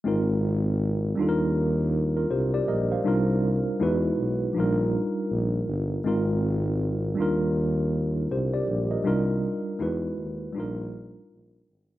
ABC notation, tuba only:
X:1
M:4/4
L:1/8
Q:"Swing 16ths" 1/4=80
K:Eb
V:1 name="Tuba" clef=bass
A,,,3 E,,3 C,, B,,, | C,,2 =E,, =B,,, _B,,, z B,,, G,,, | A,,,3 E,,3 C,, B,,, | C,, z =E,, ^D,, B,,,2 B,,, A,,, |]